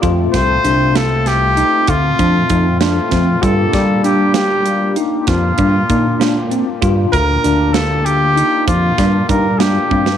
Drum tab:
HH |x-x-x-x-x-x-x-x-x-x-x-|x-x-x-x-x-x-x-x-x-x-x-|x-x-x-x-x-x-x-x-x-x---|
SD |--o---o-o---------o-o-|--o---o-----o-----o---|------o-------o---o--o|
BD |o-o---------o-o-o---o-|o-o---------o-o-o-----|o-o---------o-o-o---o-|